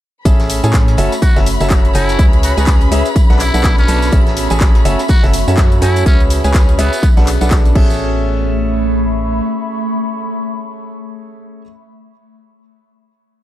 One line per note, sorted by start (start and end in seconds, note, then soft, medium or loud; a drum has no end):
0.25 0.61 A1 loud
0.25 1.46 A3 medium
0.25 0.60 C#4 medium
0.25 0.60 G#4 medium
0.25 0.60 A4 medium
0.25 0.60 E5 medium
0.25 7.75 B5 medium
0.25 kick loud
0.25 closed hi-hat loud
0.25 tambourine medium
0.25 cabasa soft
0.39 snare medium
0.39 closed hi-hat soft
0.39 tambourine soft
0.50 1.46 E5 medium
0.50 open hi-hat loud
0.50 tambourine medium
0.50 cabasa medium
0.64 0.96 A2 loud
0.64 0.96 C#4 medium
0.64 0.96 G#4 medium
0.64 0.96 A4 medium
0.64 0.96 G#5 medium
0.64 closed hi-hat soft
0.64 tambourine medium
0.64 cabasa soft
0.73 kick loud
0.73 snare loud
0.73 clap loud
0.73 closed hi-hat loud
0.73 tambourine medium
0.73 cabasa soft
0.88 closed hi-hat soft
0.88 tambourine soft
0.97 1.09 F#1 loud
0.97 1.12 C#4 medium
0.97 1.12 F#4 medium
0.97 2.59 F#4 medium
0.97 1.12 A4 medium
0.97 1.12 E5 loud
0.97 open hi-hat loud
0.97 tambourine medium
0.97 cabasa medium
1.12 closed hi-hat soft
1.12 tambourine medium
1.12 cabasa soft
1.19 1.38 F#4 loud
1.19 3.16 C#5 medium
1.19 kick loud
1.19 closed hi-hat loud
1.19 tambourine medium
1.19 cabasa soft
1.36 1.58 F#1 loud
1.36 1.46 C#4 medium
1.36 1.46 F#4 medium
1.36 1.46 A4 medium
1.36 1.46 E5 loud
1.36 snare medium
1.36 closed hi-hat soft
1.36 tambourine soft
1.46 open hi-hat loud
1.46 tambourine medium
1.46 cabasa medium
1.60 1.93 F#1 loud
1.60 1.92 C#4 medium
1.60 1.92 F#4 medium
1.60 1.92 A4 medium
1.60 1.92 E5 medium
1.60 snare soft
1.60 closed hi-hat soft
1.60 tambourine medium
1.60 cabasa soft
1.70 kick loud
1.70 snare loud
1.70 clap loud
1.70 closed hi-hat loud
1.70 tambourine medium
1.70 cabasa soft
1.85 closed hi-hat soft
1.85 tambourine soft
1.94 2.17 F#1 loud
1.94 2.17 C#4 medium
1.94 2.25 E4 loud
1.94 2.17 F#4 medium
1.94 2.17 A4 medium
1.94 2.17 G#5 medium
1.94 open hi-hat loud
1.94 tambourine medium
1.94 cabasa medium
2.09 closed hi-hat soft
2.09 tambourine medium
2.09 cabasa soft
2.19 2.54 C#2 loud
2.19 2.54 C#4 medium
2.19 3.16 C#4 medium
2.19 2.54 G#4 medium
2.19 2.54 E5 medium
2.19 kick loud
2.19 closed hi-hat loud
2.19 tambourine medium
2.19 cabasa soft
2.33 closed hi-hat soft
2.33 tambourine soft
2.38 3.56 E5 medium
2.43 2.52 F#4 medium
2.43 3.56 G#4 medium
2.43 open hi-hat loud
2.43 tambourine medium
2.43 cabasa medium
2.57 2.90 C#2 loud
2.57 2.89 C#4 medium
2.57 2.64 F#4 medium
2.57 2.89 G#4 medium
2.57 2.89 B4 medium
2.57 2.89 G#5 medium
2.57 closed hi-hat soft
2.57 tambourine medium
2.57 cabasa soft
2.67 kick loud
2.67 snare loud
2.67 clap loud
2.67 closed hi-hat medium
2.67 tambourine medium
2.67 cabasa soft
2.81 closed hi-hat soft
2.81 tambourine soft
2.92 3.03 C#2 medium
2.92 3.06 C#4 loud
2.92 3.06 G#4 medium
2.92 3.06 B4 medium
2.92 3.06 E5 loud
2.92 open hi-hat loud
2.92 tambourine medium
2.92 cabasa medium
3.05 closed hi-hat soft
3.05 tambourine medium
3.05 cabasa soft
3.16 4.42 B3 medium
3.16 kick loud
3.16 closed hi-hat loud
3.16 tambourine medium
3.16 cabasa soft
3.30 3.51 B1 loud
3.30 3.40 D4 medium
3.30 3.40 A4 medium
3.30 3.40 B4 medium
3.30 3.40 F#5 loud
3.30 snare medium
3.30 closed hi-hat soft
3.30 tambourine soft
3.35 4.42 F#4 medium
3.40 3.76 E4 loud
3.40 clap medium
3.40 open hi-hat loud
3.40 tambourine medium
3.40 cabasa medium
3.54 3.86 B1 loud
3.54 3.86 D4 medium
3.54 3.86 A4 medium
3.54 3.86 B4 medium
3.54 3.86 F#5 medium
3.54 closed hi-hat soft
3.54 tambourine medium
3.54 cabasa soft
3.64 kick loud
3.64 snare loud
3.64 clap loud
3.64 closed hi-hat medium
3.64 tambourine medium
3.64 cabasa soft
3.78 4.18 C#4 loud
3.78 closed hi-hat soft
3.78 tambourine soft
3.88 4.11 B1 loud
3.88 4.10 D4 medium
3.88 4.10 A4 medium
3.88 4.10 B4 medium
3.88 4.10 A5 medium
3.88 snare soft
3.88 open hi-hat loud
3.88 tambourine medium
3.88 cabasa medium
4.02 snare soft
4.02 closed hi-hat soft
4.02 tambourine medium
4.02 cabasa soft
4.12 4.48 A1 loud
4.12 5.34 A3 medium
4.12 4.47 C#4 medium
4.12 4.48 G#4 medium
4.12 4.48 A4 medium
4.12 4.48 E5 medium
4.12 kick loud
4.12 closed hi-hat medium
4.12 tambourine medium
4.12 cabasa soft
4.27 5.34 C#6 medium
4.27 snare medium
4.27 closed hi-hat soft
4.27 tambourine soft
4.37 5.34 E5 medium
4.37 open hi-hat loud
4.37 tambourine medium
4.37 cabasa medium
4.50 4.83 A1 loud
4.50 4.83 C#4 medium
4.50 4.83 G#4 medium
4.50 4.83 A4 medium
4.50 4.83 G#5 medium
4.50 closed hi-hat soft
4.50 tambourine medium
4.50 cabasa soft
4.60 kick loud
4.60 snare loud
4.60 clap loud
4.60 closed hi-hat medium
4.60 tambourine medium
4.60 cabasa soft
4.75 closed hi-hat soft
4.75 tambourine soft
4.85 4.96 F#1 loud
4.85 4.99 C#4 medium
4.85 6.46 F#4 medium
4.85 4.99 F#4 medium
4.85 4.99 A4 medium
4.85 4.99 E5 loud
4.85 open hi-hat loud
4.85 tambourine medium
4.85 cabasa medium
4.99 7.03 C#5 medium
4.99 closed hi-hat soft
4.99 tambourine medium
4.99 cabasa soft
5.08 5.25 F#4 loud
5.08 kick loud
5.08 closed hi-hat medium
5.08 tambourine loud
5.08 tambourine medium
5.08 cabasa soft
5.23 5.45 F#1 loud
5.23 5.33 C#4 medium
5.23 5.33 F#4 medium
5.23 5.33 A4 medium
5.23 5.33 E5 loud
5.23 snare medium
5.23 closed hi-hat soft
5.23 tambourine soft
5.34 open hi-hat loud
5.34 tambourine medium
5.34 cabasa medium
5.48 5.80 F#2 loud
5.48 5.80 C#4 medium
5.48 5.80 F#4 medium
5.48 5.80 A4 medium
5.48 5.80 E5 medium
5.48 snare soft
5.48 closed hi-hat soft
5.48 tambourine medium
5.48 cabasa soft
5.57 kick loud
5.57 snare loud
5.57 clap loud
5.57 closed hi-hat medium
5.57 tambourine medium
5.57 cabasa soft
5.72 closed hi-hat soft
5.72 tambourine soft
5.82 6.04 F#2 loud
5.82 6.04 C#4 medium
5.82 6.06 E4 medium
5.82 6.04 F#4 medium
5.82 6.04 A4 medium
5.82 6.04 G#5 medium
5.82 open hi-hat loud
5.82 tambourine medium
5.82 cabasa medium
5.96 closed hi-hat soft
5.96 tambourine medium
5.96 cabasa soft
6.06 6.42 C#2 loud
6.06 7.03 C#4 medium
6.06 6.22 C#4 loud
6.06 6.41 G#4 medium
6.06 6.41 E5 medium
6.06 kick loud
6.06 closed hi-hat medium
6.06 tambourine medium
6.06 cabasa soft
6.20 closed hi-hat soft
6.20 tambourine soft
6.30 open hi-hat loud
6.30 tambourine medium
6.30 cabasa medium
6.43 6.77 C#2 loud
6.43 6.76 C#4 medium
6.43 7.43 G#4 medium
6.43 6.76 G#4 medium
6.43 6.76 B4 medium
6.43 6.76 G#5 loud
6.43 closed hi-hat soft
6.43 tambourine medium
6.43 cabasa soft
6.50 7.43 E5 medium
6.50 clap loud
6.50 tambourine medium
6.54 kick loud
6.54 snare loud
6.54 closed hi-hat medium
6.54 cabasa soft
6.69 closed hi-hat soft
6.69 tambourine soft
6.79 6.90 C#2 medium
6.79 7.09 B3 loud
6.79 6.93 C#4 medium
6.79 6.93 G#4 medium
6.79 6.93 B4 medium
6.79 6.93 E5 loud
6.79 open hi-hat loud
6.79 tambourine medium
6.79 cabasa medium
6.93 closed hi-hat soft
6.93 tambourine medium
6.93 cabasa soft
7.03 kick loud
7.03 closed hi-hat medium
7.03 tambourine medium
7.03 cabasa soft
7.17 7.38 B1 loud
7.17 7.27 D4 medium
7.17 7.27 A4 medium
7.17 7.27 B4 medium
7.17 7.27 F#5 loud
7.17 snare medium
7.17 closed hi-hat soft
7.17 tambourine soft
7.27 clap medium
7.27 open hi-hat loud
7.27 tambourine medium
7.27 cabasa medium
7.41 7.73 B1 loud
7.41 7.73 D4 medium
7.41 7.73 A4 medium
7.41 7.73 B4 medium
7.41 7.73 F#5 medium
7.41 closed hi-hat soft
7.41 tambourine medium
7.41 cabasa soft
7.51 kick loud
7.51 snare loud
7.51 clap loud
7.51 closed hi-hat medium
7.51 tambourine medium
7.51 cabasa soft
7.65 closed hi-hat soft
7.65 tambourine soft
7.75 9.41 A1 loud
7.75 11.62 A3 medium
7.75 11.61 C#4 medium
7.75 11.62 G#4 medium
7.75 11.61 A4 medium
7.75 11.61 E5 loud
7.75 kick loud
7.75 crash medium
7.84 11.70 E5 medium
7.90 tambourine medium
8.16 12.02 B5 medium
8.22 12.08 C#6 medium